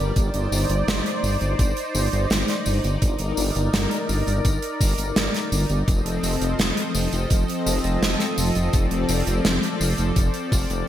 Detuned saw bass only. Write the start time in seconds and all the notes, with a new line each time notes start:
0.00 G1
0.16 G1
0.34 G1
0.52 G1
0.70 G1
0.88 G1
1.23 G1
1.41 G1
1.59 G1
1.95 G1
2.13 G1
2.31 G1
2.66 G1
2.84 G1
3.02 G1
3.20 G1
3.38 G1
3.56 G1
3.73 G1
4.09 G1
4.27 G1
4.45 G1
4.81 G1
4.98 G1
5.16 G1
5.52 G1
5.70 G1
5.88 F1
6.06 F1
6.23 F1
6.41 F1
6.59 F1
6.95 F1
7.13 F1
7.31 F1
7.66 F1
7.84 F1
8.02 F1
8.38 F1
8.56 F1
8.74 F1
8.91 F1
9.09 F1
9.27 F1
9.45 F1
9.81 F1
9.98 F1
10.16 F1
10.52 F1
10.70 F1